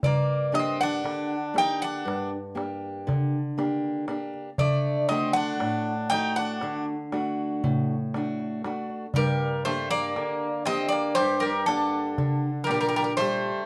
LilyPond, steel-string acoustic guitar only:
\new Staff \with { instrumentName = "Steel-string acoustic guitar" } { \time 9/8 \tempo 4. = 40 g,8 <bes d' g'>8 d8 <bes d' g'>8 g,8 <bes d' g'>8 d8 <bes d' g'>8 <bes d' g'>8 | d8 <a d' fis'>8 a,8 <a d' fis'>8 d8 <a d' fis'>8 a,8 <a d' fis'>8 <a d' fis'>8 | g,8 <bes d' g'>8 d8 <bes d' g'>8 g,8 <bes d' g'>8 d8 <bes, d' g'>8 <g d' g'>8 | }